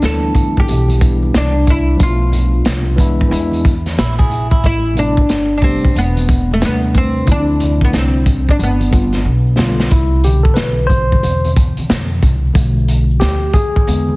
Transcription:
0.00 upright bass D2, tine electric piano E3 G3 B3 D4 E4, snare, closed hi-hat, shaker
0.05 oud A4
0.23 shaker
0.35 kick, closed hi-hat, low conga, shaker
0.56 oud G4, muted upright bass stroke, kick, shaker
0.67 upright bass B1, closed hi-hat, high conga, shaker
0.88 closed hi-hat, high conga, shaker
0.98 tine electric piano E3 G3 B3 D4 E4, kick, closed hi-hat, shaker
1.22 high conga, shaker
1.34 upright bass C2, oud D4, snare, closed hi-hat, shaker
1.55 shaker
1.66 kick, closed hi-hat, low conga, shaker
1.70 oud E4
1.87 shaker
1.97 upright bass B1, tine electric piano F3 A3 B3 D4, kick, closed hi-hat, shaker
2.01 tine electric piano E4, oud F4
2.07 tine electric piano F4
2.20 shaker
2.32 closed hi-hat, low conga, shaker
2.53 shaker
2.65 upright bass C2, snare, closed hi-hat, shaker
2.86 shaker
2.96 tine electric piano E3 G#3 B3 D4, kick, closed hi-hat, low conga, shaker
3.00 tine electric piano E4
3.20 muted upright bass stroke, kick, shaker
3.28 upright bass E2, tine electric piano E3 G#3 B3 D4 E4, high conga, shaker
3.32 closed hi-hat
3.52 closed hi-hat, high conga, shaker
3.64 kick, closed hi-hat, shaker
3.86 snare, closed hi-hat, high conga, shaker
3.97 upright bass A#1, clean electric guitar E4, snare, closed hi-hat, shaker
4.18 clean electric guitar E4 G#4, kick, closed hi-hat, shaker
4.30 closed hi-hat, low conga, shaker
4.51 clean electric guitar E4, kick, shaker
4.62 upright bass A1, kick, closed hi-hat, shaker
4.66 oud E4
4.84 shaker
4.93 tine electric piano C3 G3 A3 B3 E4, closed hi-hat, low conga, shaker
4.99 oud D4
5.16 kick, shaker
5.29 upright bass G1, snare, closed hi-hat, shaker
5.50 shaker
5.58 tine electric piano C3 G3, oud D4
5.62 tine electric piano A3 B3 G4, oud C4, kick, open hi-hat, low conga, shaker
5.84 muted upright bass stroke, kick, shaker
5.95 upright bass E1, oud B3, closed hi-hat, high conga, shaker
6.17 closed hi-hat, high conga, shaker
6.29 kick, closed hi-hat, shaker
6.51 oud A3, high conga, shaker
6.59 upright bass D#2, tine electric piano C3 G3 A3 D4 B4, snare, closed hi-hat, shaker
6.65 oud B3
6.83 shaker
6.94 oud C4, kick, closed hi-hat, low conga, shaker
7.17 shaker
7.25 upright bass D2, tine electric piano D3 F3 A3 C4 E4, kick, closed hi-hat, shaker
7.31 oud D4
7.50 shaker
7.60 closed hi-hat, low conga, shaker
7.81 oud B3, kick, shaker
7.93 upright bass C2, snare, closed hi-hat, shaker
7.98 oud C4
8.14 shaker
8.26 kick, closed hi-hat, high conga, low conga, shaker
8.49 oud D4, muted upright bass stroke, kick, shaker
8.59 upright bass G1, closed hi-hat, high conga, shaker
8.63 oud B3
8.80 closed hi-hat, high conga, shaker
8.90 tine electric piano D3 G3 A3 B3 F4, kick, closed hi-hat, shaker
9.13 snare, closed hi-hat, high conga, shaker
9.25 upright bass B1, shaker
9.46 shaker
9.56 tine electric piano D3 G3 A3 B3, snare, high conga, low conga, shaker
9.60 tine electric piano F4
9.79 snare, shaker
9.91 upright bass C2, tine electric piano E4, kick, closed hi-hat, shaker
10.12 shaker
10.24 tine electric piano B2 D3 E3 G4, closed hi-hat, shaker
10.43 tine electric piano A4, kick, shaker
10.54 upright bass B1, tine electric piano B4, snare, closed hi-hat, shaker
10.79 shaker
10.87 tine electric piano C5, kick, closed hi-hat, high conga, low conga, shaker
11.12 kick, shaker
11.23 upright bass E2, closed hi-hat, high conga, shaker
11.45 closed hi-hat, high conga, shaker
11.56 kick, closed hi-hat, shaker
11.77 muted upright bass stroke, closed hi-hat, high conga, shaker
11.89 upright bass F2, snare, closed hi-hat, shaker
12.11 shaker
12.22 upright bass C2, kick, closed hi-hat, low conga, shaker
12.45 shaker
12.54 upright bass B1, tine electric piano D3 F3 A3, kick, closed hi-hat, shaker
12.78 shaker
12.88 closed hi-hat, shaker
13.10 shaker
13.20 upright bass D2, tine electric piano G4, snare, closed hi-hat, shaker
13.44 shaker
13.53 tine electric piano G#4, kick, closed hi-hat, high conga, low conga, shaker
13.76 kick, shaker
13.87 upright bass E2, tine electric piano D3 G#3 B3, closed hi-hat, high conga, shaker
14.08 high conga, shaker

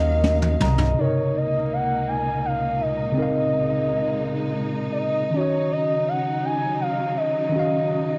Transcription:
Already playing: analog synth bass D#2, tine electric piano D#3 C#4 F#4 F5, string section F#3 C#4 F5, horn section A#3 F#4 A#4, soft synth lead D#5
0.24 tine electric piano D#5, high tom
0.42 mid tom
0.60 analog synth bass C2, soft synth lead D#5, tine electric piano A#5, mid tom
0.78 floor tom
0.94 string section C#2 A#2 A#3 D#4, tine electric piano C3 C#3
0.99 tine electric piano D#4 A#4, soft synth lead C#5
1.04 tine electric piano D#5
1.37 soft synth lead D#5
1.73 soft synth lead F#5
2.08 soft synth lead G#5
2.45 soft synth lead F5
2.81 soft synth lead D#5
3.12 tine electric piano C#3 C4
3.16 string section G#3, tine electric piano D#4 A#4, soft synth lead D#5
3.22 tine electric piano F5
4.92 soft synth lead D5
4.98 soft synth lead D#5
5.28 tine electric piano D#3, soft synth lead D#5
5.33 string section C#3 F#3, tine electric piano C#4, soft synth lead C#5
5.37 tine electric piano F#4 D#5
5.72 soft synth lead D#5
6.08 soft synth lead F#5
6.45 soft synth lead G#5
6.81 soft synth lead F5
7.17 soft synth lead D#5
7.49 tine electric piano D#3 C#4
7.53 tine electric piano F#4, soft synth lead D#5
7.59 tine electric piano F5

